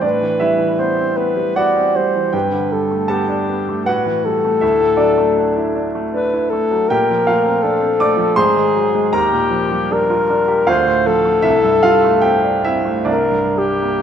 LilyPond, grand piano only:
<<
  \new Staff \with { instrumentName = "Grand piano" } { \time 3/4 \key d \mixolydian \tempo 4 = 78 <d' d''>8 <e' e''>4. <fis' fis''>4 | <g' g''>4 <a' a''>4 <fis' fis''>4 | <e' e''>8 <d' d''>4 r4. | \key c \mixolydian <g' g''>8 <f' f''>4 <d'' d'''>8 <c'' c'''>4 |
<bes' bes''>2 <f' f''>4 | <e' e''>8 <f' f''>8 <g' g''>8 <e' e''>8 <d' d''>4 | }
  \new Staff \with { instrumentName = "Grand piano" } { \clef bass \time 3/4 \key d \mixolydian a,16 e16 g16 e16 b16 c'16 b16 g16 b16 c'16 g16 e16 | g,16 d16 g16 a16 b16 d'16 b16 a16 a,16 e16 g16 a16 | d,16 a,16 fis16 a16 d'16 e'16 d'16 a16 d'16 e'16 a16 fis16 | \key c \mixolydian bes,16 f16 a16 c'16 d'16 c'16 a16 f16 aes,16 ees16 ges16 aes16 |
ees,16 bes,16 f16 g16 d'16 f'16 d'16 g'16 d,16 a,16 f16 a16 | c,16 g,16 g16 a16 c'16 d'16 c'16 a16 c,16 g,16 g16 bes16 | }
>>